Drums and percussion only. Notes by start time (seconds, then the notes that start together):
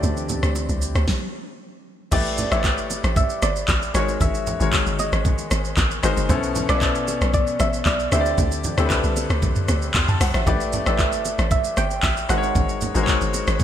0.03 low conga, shaker
0.17 shaker
0.29 low conga, shaker
0.43 cross-stick, shaker
0.55 high bongo, shaker
0.69 shaker
0.82 shaker
0.95 cross-stick, shaker
1.08 kick, snare
2.12 kick, crash, low conga, shaker
2.26 shaker
2.38 low conga, shaker
2.52 cross-stick, shaker
2.64 kick, clap, high bongo, shaker
2.78 shaker
2.90 low bongo, shaker
3.04 cross-stick, shaker
3.16 kick, low conga, shaker
3.30 shaker
3.42 cross-stick, low bongo, shaker
3.56 shaker
3.68 kick, clap, high bongo, low bongo, shaker
3.82 shaker
3.95 cross-stick, shaker
4.08 high bongo, shaker
4.21 kick, low conga, shaker
4.34 shaker
4.47 low conga, shaker
4.61 shaker
4.73 kick, clap, high bongo, shaker
4.86 shaker
4.99 low bongo, shaker
5.13 cross-stick, shaker
5.25 kick, low conga, shaker
5.38 shaker
5.51 cross-stick, low bongo, shaker
5.65 shaker
5.77 kick, clap, high bongo, low bongo, shaker
5.91 shaker
6.03 cross-stick, shaker
6.17 high bongo, shaker
6.29 kick, low conga, shaker
6.43 shaker
6.55 low conga, shaker
6.69 cross-stick, shaker
6.81 kick, clap, high bongo, shaker
6.95 shaker
7.08 low bongo, shaker
7.21 cross-stick, shaker
7.34 kick, low conga, shaker
7.47 shaker
7.60 cross-stick, low bongo, shaker
7.73 shaker
7.86 kick, clap, high bongo, low bongo, shaker
8.00 shaker
8.12 cross-stick, shaker
8.26 high bongo, shaker
8.38 kick, low conga, shaker
8.52 shaker
8.64 low conga, shaker
8.78 cross-stick, shaker
8.90 kick, clap, high bongo, shaker
9.04 shaker
9.17 low bongo, shaker
9.30 cross-stick, shaker
9.42 kick, low conga, shaker
9.56 mid tom, shaker
9.68 cross-stick, low bongo, shaker
9.82 shaker
9.94 kick, clap, high bongo, low bongo, shaker
10.08 mid tom, shaker
10.21 cross-stick, open hi-hat, shaker
10.34 cross-stick, high bongo, shaker
10.47 kick, low conga, shaker
10.60 shaker
10.73 low conga, shaker
10.86 cross-stick, shaker
10.99 kick, clap, high bongo, shaker
11.12 shaker
11.25 low bongo, shaker
11.39 cross-stick, shaker
11.51 kick, low conga, shaker
11.64 shaker
11.77 cross-stick, low bongo, shaker
11.91 shaker
12.03 kick, clap, high bongo, low bongo, shaker
12.17 shaker
12.29 cross-stick, shaker
12.43 high bongo, shaker
12.55 kick, low conga, shaker
12.69 shaker
12.81 low conga, shaker
12.95 shaker
13.07 kick, clap, high bongo, shaker
13.21 shaker
13.34 low bongo, shaker
13.47 cross-stick, shaker
13.60 kick, low conga, shaker